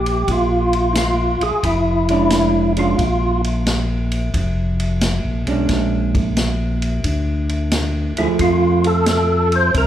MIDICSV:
0, 0, Header, 1, 5, 480
1, 0, Start_track
1, 0, Tempo, 676819
1, 196, Time_signature, 4, 2, 24, 8
1, 6999, End_track
2, 0, Start_track
2, 0, Title_t, "Tonewheel organ"
2, 0, Program_c, 0, 16
2, 0, Note_on_c, 0, 67, 87
2, 219, Note_on_c, 0, 65, 92
2, 223, Note_off_c, 0, 67, 0
2, 660, Note_on_c, 0, 64, 66
2, 668, Note_off_c, 0, 65, 0
2, 685, Note_off_c, 0, 64, 0
2, 695, Note_on_c, 0, 65, 86
2, 1012, Note_on_c, 0, 68, 99
2, 1018, Note_off_c, 0, 65, 0
2, 1165, Note_on_c, 0, 64, 86
2, 1167, Note_off_c, 0, 68, 0
2, 1935, Note_off_c, 0, 64, 0
2, 1980, Note_on_c, 0, 65, 78
2, 2421, Note_off_c, 0, 65, 0
2, 5804, Note_on_c, 0, 64, 70
2, 5874, Note_off_c, 0, 64, 0
2, 5965, Note_on_c, 0, 65, 77
2, 6288, Note_on_c, 0, 69, 78
2, 6293, Note_off_c, 0, 65, 0
2, 6773, Note_on_c, 0, 72, 98
2, 6777, Note_off_c, 0, 69, 0
2, 6912, Note_off_c, 0, 72, 0
2, 6933, Note_on_c, 0, 70, 91
2, 6999, Note_off_c, 0, 70, 0
2, 6999, End_track
3, 0, Start_track
3, 0, Title_t, "Hollow-body jazz guitar"
3, 0, Program_c, 1, 26
3, 1487, Note_on_c, 1, 56, 62
3, 1493, Note_on_c, 1, 61, 65
3, 1497, Note_on_c, 1, 62, 74
3, 1931, Note_off_c, 1, 56, 0
3, 1934, Note_off_c, 1, 61, 0
3, 1936, Note_off_c, 1, 62, 0
3, 1964, Note_on_c, 1, 56, 62
3, 1968, Note_on_c, 1, 61, 63
3, 1972, Note_on_c, 1, 62, 60
3, 2103, Note_off_c, 1, 56, 0
3, 2105, Note_off_c, 1, 61, 0
3, 2107, Note_off_c, 1, 62, 0
3, 3882, Note_on_c, 1, 56, 59
3, 3887, Note_on_c, 1, 61, 55
3, 3893, Note_on_c, 1, 62, 60
3, 4486, Note_off_c, 1, 56, 0
3, 4489, Note_off_c, 1, 61, 0
3, 4491, Note_off_c, 1, 62, 0
3, 5802, Note_on_c, 1, 53, 63
3, 5804, Note_on_c, 1, 57, 61
3, 5811, Note_on_c, 1, 68, 64
3, 6406, Note_off_c, 1, 53, 0
3, 6407, Note_off_c, 1, 57, 0
3, 6410, Note_off_c, 1, 68, 0
3, 6999, End_track
4, 0, Start_track
4, 0, Title_t, "Tonewheel organ"
4, 0, Program_c, 2, 16
4, 0, Note_on_c, 2, 34, 78
4, 167, Note_off_c, 2, 34, 0
4, 195, Note_on_c, 2, 34, 83
4, 971, Note_off_c, 2, 34, 0
4, 996, Note_on_c, 2, 34, 36
4, 1076, Note_off_c, 2, 34, 0
4, 1159, Note_on_c, 2, 29, 80
4, 2089, Note_off_c, 2, 29, 0
4, 2118, Note_on_c, 2, 34, 85
4, 3049, Note_off_c, 2, 34, 0
4, 3076, Note_on_c, 2, 29, 84
4, 3688, Note_off_c, 2, 29, 0
4, 3718, Note_on_c, 2, 34, 60
4, 3866, Note_off_c, 2, 34, 0
4, 3876, Note_on_c, 2, 35, 65
4, 4025, Note_off_c, 2, 35, 0
4, 4033, Note_on_c, 2, 34, 79
4, 4966, Note_off_c, 2, 34, 0
4, 4994, Note_on_c, 2, 38, 76
4, 5769, Note_off_c, 2, 38, 0
4, 5800, Note_on_c, 2, 38, 35
4, 5878, Note_off_c, 2, 38, 0
4, 5954, Note_on_c, 2, 41, 85
4, 6886, Note_off_c, 2, 41, 0
4, 6912, Note_on_c, 2, 36, 83
4, 6999, Note_off_c, 2, 36, 0
4, 6999, End_track
5, 0, Start_track
5, 0, Title_t, "Drums"
5, 44, Note_on_c, 9, 51, 47
5, 115, Note_off_c, 9, 51, 0
5, 197, Note_on_c, 9, 36, 32
5, 197, Note_on_c, 9, 51, 56
5, 268, Note_off_c, 9, 36, 0
5, 268, Note_off_c, 9, 51, 0
5, 517, Note_on_c, 9, 51, 45
5, 588, Note_off_c, 9, 51, 0
5, 676, Note_on_c, 9, 44, 56
5, 676, Note_on_c, 9, 51, 69
5, 678, Note_on_c, 9, 38, 64
5, 747, Note_off_c, 9, 44, 0
5, 747, Note_off_c, 9, 51, 0
5, 748, Note_off_c, 9, 38, 0
5, 1001, Note_on_c, 9, 51, 43
5, 1072, Note_off_c, 9, 51, 0
5, 1158, Note_on_c, 9, 36, 30
5, 1159, Note_on_c, 9, 51, 54
5, 1229, Note_off_c, 9, 36, 0
5, 1230, Note_off_c, 9, 51, 0
5, 1479, Note_on_c, 9, 51, 45
5, 1550, Note_off_c, 9, 51, 0
5, 1634, Note_on_c, 9, 44, 50
5, 1634, Note_on_c, 9, 51, 57
5, 1635, Note_on_c, 9, 38, 62
5, 1705, Note_off_c, 9, 44, 0
5, 1705, Note_off_c, 9, 51, 0
5, 1706, Note_off_c, 9, 38, 0
5, 1961, Note_on_c, 9, 51, 45
5, 2032, Note_off_c, 9, 51, 0
5, 2118, Note_on_c, 9, 36, 31
5, 2119, Note_on_c, 9, 51, 56
5, 2189, Note_off_c, 9, 36, 0
5, 2190, Note_off_c, 9, 51, 0
5, 2442, Note_on_c, 9, 51, 43
5, 2513, Note_off_c, 9, 51, 0
5, 2599, Note_on_c, 9, 44, 50
5, 2599, Note_on_c, 9, 51, 59
5, 2601, Note_on_c, 9, 38, 63
5, 2670, Note_off_c, 9, 44, 0
5, 2670, Note_off_c, 9, 51, 0
5, 2672, Note_off_c, 9, 38, 0
5, 2919, Note_on_c, 9, 51, 45
5, 2990, Note_off_c, 9, 51, 0
5, 3077, Note_on_c, 9, 36, 32
5, 3078, Note_on_c, 9, 51, 54
5, 3148, Note_off_c, 9, 36, 0
5, 3149, Note_off_c, 9, 51, 0
5, 3402, Note_on_c, 9, 51, 45
5, 3473, Note_off_c, 9, 51, 0
5, 3555, Note_on_c, 9, 44, 54
5, 3555, Note_on_c, 9, 51, 59
5, 3556, Note_on_c, 9, 38, 63
5, 3626, Note_off_c, 9, 44, 0
5, 3626, Note_off_c, 9, 51, 0
5, 3627, Note_off_c, 9, 38, 0
5, 3878, Note_on_c, 9, 51, 43
5, 3949, Note_off_c, 9, 51, 0
5, 4033, Note_on_c, 9, 51, 52
5, 4035, Note_on_c, 9, 36, 31
5, 4035, Note_on_c, 9, 38, 35
5, 4104, Note_off_c, 9, 51, 0
5, 4106, Note_off_c, 9, 36, 0
5, 4106, Note_off_c, 9, 38, 0
5, 4360, Note_on_c, 9, 36, 52
5, 4361, Note_on_c, 9, 51, 43
5, 4431, Note_off_c, 9, 36, 0
5, 4432, Note_off_c, 9, 51, 0
5, 4515, Note_on_c, 9, 44, 57
5, 4515, Note_on_c, 9, 51, 57
5, 4516, Note_on_c, 9, 38, 62
5, 4586, Note_off_c, 9, 44, 0
5, 4586, Note_off_c, 9, 51, 0
5, 4587, Note_off_c, 9, 38, 0
5, 4837, Note_on_c, 9, 51, 42
5, 4908, Note_off_c, 9, 51, 0
5, 4993, Note_on_c, 9, 51, 54
5, 4995, Note_on_c, 9, 36, 31
5, 5064, Note_off_c, 9, 51, 0
5, 5066, Note_off_c, 9, 36, 0
5, 5315, Note_on_c, 9, 51, 41
5, 5386, Note_off_c, 9, 51, 0
5, 5471, Note_on_c, 9, 44, 57
5, 5471, Note_on_c, 9, 51, 63
5, 5473, Note_on_c, 9, 38, 63
5, 5542, Note_off_c, 9, 44, 0
5, 5542, Note_off_c, 9, 51, 0
5, 5544, Note_off_c, 9, 38, 0
5, 5793, Note_on_c, 9, 51, 44
5, 5864, Note_off_c, 9, 51, 0
5, 5951, Note_on_c, 9, 51, 54
5, 5954, Note_on_c, 9, 36, 30
5, 6022, Note_off_c, 9, 51, 0
5, 6025, Note_off_c, 9, 36, 0
5, 6271, Note_on_c, 9, 51, 43
5, 6342, Note_off_c, 9, 51, 0
5, 6427, Note_on_c, 9, 44, 56
5, 6427, Note_on_c, 9, 51, 67
5, 6428, Note_on_c, 9, 38, 62
5, 6498, Note_off_c, 9, 44, 0
5, 6498, Note_off_c, 9, 51, 0
5, 6499, Note_off_c, 9, 38, 0
5, 6751, Note_on_c, 9, 51, 42
5, 6822, Note_off_c, 9, 51, 0
5, 6911, Note_on_c, 9, 51, 54
5, 6912, Note_on_c, 9, 36, 32
5, 6981, Note_off_c, 9, 51, 0
5, 6983, Note_off_c, 9, 36, 0
5, 6999, End_track
0, 0, End_of_file